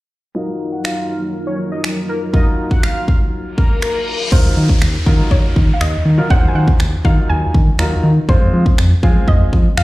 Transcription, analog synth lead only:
0.35 D#5
0.72 F#5
0.85 F5
1.10 F5
1.47 C#5
1.72 D#5
2.09 A#4
2.34 D#5
2.71 F#5
2.83 F5
3.08 F5
3.58 A#4
3.82 A#4

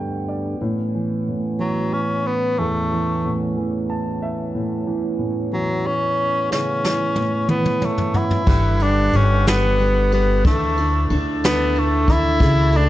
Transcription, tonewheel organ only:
Already playing: G2 D3 G3 B3
0.61 A2 E3 C#4
8.49 D3 G4 B4 F#5
10.45 E4 A4 D5 A5
12.40 F#4 C#5 A5

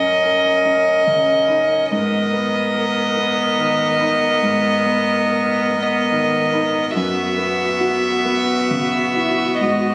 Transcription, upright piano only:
Already playing: F#2 C#4
0.24 A#4
0.65 C#4
1.07 C#3
1.48 D#4
1.91 G#2
2.33 B3
2.74 A#4
3.17 B3
3.59 D#3
4.01 D#4
4.42 G#2
4.86 B3
5.26 A#4
5.70 B3
6.11 D#3
6.54 D#4
6.95 F#2
7.38 B3
7.80 F#4
8.25 B3
8.70 C#3
9.16 E4
9.61 G#2

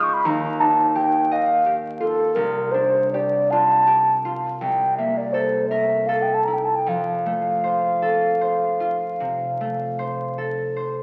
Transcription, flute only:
0.03 C#6
0.13 B5
0.25 A#5
0.60 A5
0.96 G5
1.33 F5
2.00 A4
2.35 A#4
2.71 C5
3.12 D5
3.51 A5
4.61 G5
4.97 E5
5.17 D5
5.33 C5
5.69 E5
6.07 F5
6.22 G5
6.34 A5
6.44 A#5
6.53 G5
6.64 A5
6.76 G5
6.89 F5

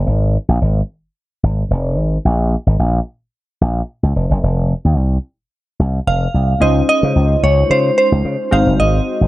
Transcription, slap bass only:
0.07 G#1
0.48 A#1
0.61 G#1
1.43 G#1
1.70 F1
1.98 G#1
2.25 A#1
2.66 G#1
2.79 A#1
3.61 A#1
4.03 C#2
4.16 F1
4.30 F#1
4.43 F1
4.85 D#2
4.97 C2
5.79 C2
6.07 F1
6.34 C2
6.61 C#2
7.03 C#3
7.16 C#2
7.43 C#2
7.70 C#3
8.12 C#2
8.25 C#3
8.52 G#1
8.66 F#1
8.79 G#1
9.21 G#1

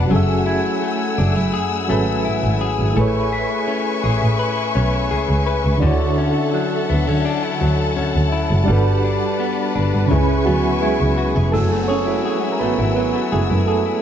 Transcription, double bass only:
0.12 F#1
1.19 F#1
1.37 F#2
1.90 G#1
2.26 G#1
2.44 G#1
2.79 G#1
2.97 A1
4.04 A1
4.22 A2
4.76 B1
5.11 C#2
5.29 C#2
5.65 C#2
5.83 D2
6.90 D2
7.08 D3
7.62 D2
7.98 D2
8.15 D2
8.51 F#1
8.69 G1
9.76 G1
9.94 G2
10.12 C#2
10.48 D2
10.83 C#2
11.01 C#2
11.36 F1
11.54 F#1
12.61 G#1
12.79 G#1
13.33 F#1
13.51 F#2

